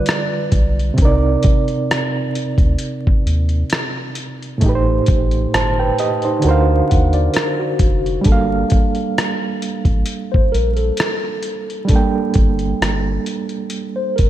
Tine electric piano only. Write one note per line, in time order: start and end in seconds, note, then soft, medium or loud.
6.90 7.13 F#5 medium
7.14 7.33 D5 medium
7.34 7.58 A#4 medium
7.59 8.22 F#4 medium
10.32 10.51 C5 medium
10.52 10.76 A#4 medium
10.77 12.10 A4 medium
13.96 14.15 C5 medium
14.16 14.30 A#4 medium